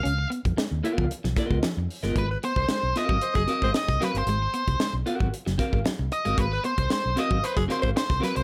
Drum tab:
HH |x-xxx-x-x-x-x-ox|x-x-x-x-x-x-x-xx|x-xxx-x-x-x-x-xx|x-xxx-x-x-x-x-xx|
SD |----o----oo-o--o|----o-o--oo-ooo-|----o----oo-o---|----o-o--oo-ooo-|
BD |---o---o--oo----|o--o---o-o-o-o--|---o---o--oo----|o--o---o-o-o-o--|